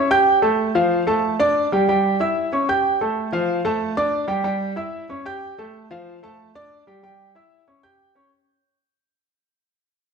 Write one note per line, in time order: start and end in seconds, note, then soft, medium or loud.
0.11 0.37 G4 medium
0.11 0.37 G5 medium
0.11 0.37 G6 loud
0.42 0.69 A3 medium
0.42 0.69 A4 medium
0.42 0.69 A5 medium
0.75 1.01 F3 medium
0.75 1.01 F4 medium
0.75 1.02 F5 medium
1.07 1.33 A3 medium
1.07 1.34 A4 medium
1.07 1.34 A5 medium
1.39 1.66 D4 loud
1.39 1.66 D5 loud
1.39 1.66 D6 medium
1.72 1.85 G3 medium
1.72 1.86 G4 medium
1.72 1.86 G5 medium
1.89 2.15 G3 medium
1.89 2.15 G4 medium
1.89 2.15 G5 medium
2.20 2.46 E4 medium
2.20 2.47 E5 medium
2.20 2.47 E6 medium
2.53 2.66 C#4 medium
2.53 2.66 C#5 medium
2.53 2.66 C#6 medium
2.69 2.95 G4 medium
2.69 2.95 G5 medium
2.69 2.95 G6 medium
3.01 3.27 A3 medium
3.01 3.27 A4 medium
3.01 3.28 A5 medium
3.32 3.59 F3 medium
3.32 3.59 F4 medium
3.32 3.59 F5 medium
3.65 3.91 A3 medium
3.65 3.91 A4 medium
3.65 3.92 A5 medium
3.97 4.24 D4 medium
3.97 4.23 D5 medium
3.97 4.24 D6 medium
4.28 4.41 G3 medium
4.28 4.42 G4 medium
4.28 4.42 G5 medium
4.44 4.71 G3 medium
4.44 4.71 G4 medium
4.44 4.71 G5 medium
4.76 5.03 E4 medium
4.76 5.03 E5 medium
4.76 5.04 E6 medium
5.09 5.23 C#4 medium
5.09 5.23 C#5 medium
5.09 5.23 C#6 medium
5.26 5.52 G4 medium
5.26 5.52 G5 loud
5.26 5.53 G6 medium
5.58 5.85 A3 medium
5.58 5.85 A4 medium
5.58 5.85 A5 medium
5.91 6.17 F3 loud
5.91 6.17 F4 medium
5.91 6.17 F5 medium
6.23 6.49 A3 medium
6.23 6.49 A4 medium
6.23 6.50 A5 loud
6.55 6.82 D4 medium
6.55 6.82 D5 loud
6.55 6.82 D6 medium
6.87 7.00 G3 medium
6.87 7.00 G4 medium
6.87 7.01 G5 medium
7.03 7.29 G3 medium
7.03 7.30 G4 medium
7.03 7.30 G5 medium
7.35 7.62 E4 medium
7.35 7.62 E5 medium
7.35 7.62 E6 medium
7.68 7.81 C#4 medium
7.68 7.81 C#5 medium
7.68 7.81 C#6 medium
7.83 8.10 G4 medium
7.83 8.10 G5 medium
7.83 8.10 G6 medium
8.15 8.29 C#4 medium
8.15 8.29 C#5 medium
8.15 8.29 C#6 medium